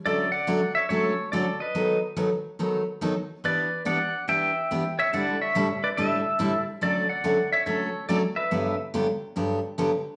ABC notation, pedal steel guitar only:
X:1
M:4/4
L:1/8
Q:"Swing" 1/4=142
K:D
V:1 name="Pedal steel guitar"
[Ad] [df]2 [ce] [Ac]2 [Ad] [B_e]- | [B_e] z6 z | [Bd]2 [df]2 [eg]3 [ce] | [df] [ce]2 [Bd] [Ae]3 z |
[Ad] [df]2 [ce] [Ac]2 [Ad] [Be]- | [Be] z6 z |]